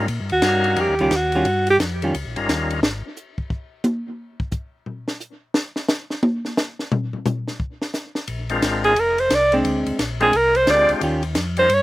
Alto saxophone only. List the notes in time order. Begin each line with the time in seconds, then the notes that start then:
0.32 F#4
0.81 G4
1.02 G4
1.16 F#4
1.70 G4
8.85 G#4
9.00 A#4
9.20 C5
9.35 D5
10.22 G#4
10.36 A#4
10.57 C5
10.71 D5
11.59 C5
11.74 C#5